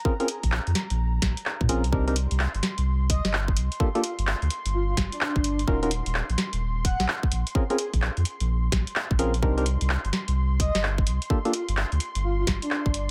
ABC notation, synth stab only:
X:1
M:4/4
L:1/16
Q:"Swing 16ths" 1/4=128
K:Cm
V:1 name="Synth stab"
[C_DFAB] [CDFAB] z12 [CDFAB] z | [CDEGB] [CDEGB] z12 z2 | [B,DFG=A] [B,DFGA] z12 z2 | [_DEF_GB] [DEFGB] z12 z2 |
[C_DFAB] [CDFAB] z12 [CDFAB] z | [CDEGB] [CDEGB] z12 z2 | [B,DFG=A] [B,DFGA] z12 z2 |]